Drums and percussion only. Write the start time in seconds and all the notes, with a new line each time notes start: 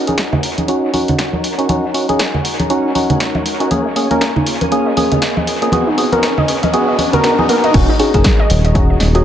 0.07 closed hi-hat, high conga
0.18 snare, closed hi-hat
0.33 low conga
0.43 open hi-hat
0.58 closed hi-hat, high conga
0.68 closed hi-hat
0.94 open hi-hat, high conga
1.08 closed hi-hat, low conga
1.19 snare, closed hi-hat
1.33 high conga
1.44 open hi-hat
1.59 closed hi-hat
1.69 closed hi-hat, high conga
1.94 open hi-hat
2.09 closed hi-hat, high conga
2.19 snare, closed hi-hat
2.34 low conga
2.45 open hi-hat
2.60 closed hi-hat, high conga
2.70 closed hi-hat
2.95 open hi-hat, high conga
3.10 closed hi-hat, low conga
3.20 snare, closed hi-hat
3.35 high conga
3.46 open hi-hat
3.60 closed hi-hat
3.71 closed hi-hat, high conga
3.96 open hi-hat
4.11 closed hi-hat, high conga
4.21 snare, closed hi-hat
4.36 low conga
4.47 open hi-hat
4.61 closed hi-hat, high conga
4.72 closed hi-hat
4.97 open hi-hat, high conga
5.12 closed hi-hat, low conga
5.22 snare, closed hi-hat
5.37 high conga
5.47 open hi-hat
5.62 closed hi-hat
5.72 closed hi-hat, high conga
5.98 open hi-hat
6.12 closed hi-hat, high conga
6.23 snare, closed hi-hat
6.38 low conga
6.48 open hi-hat
6.63 closed hi-hat, high conga
6.74 closed hi-hat
6.98 open hi-hat, high conga
7.13 closed hi-hat, low conga
7.24 snare, closed hi-hat
7.39 high conga
7.49 open hi-hat
7.64 closed hi-hat
7.74 kick, closed hi-hat, crash
8.00 open hi-hat
8.14 kick, closed hi-hat
8.24 kick, snare, closed hi-hat
8.50 open hi-hat
8.65 closed hi-hat
8.75 kick, closed hi-hat
9.00 snare, open hi-hat
9.15 closed hi-hat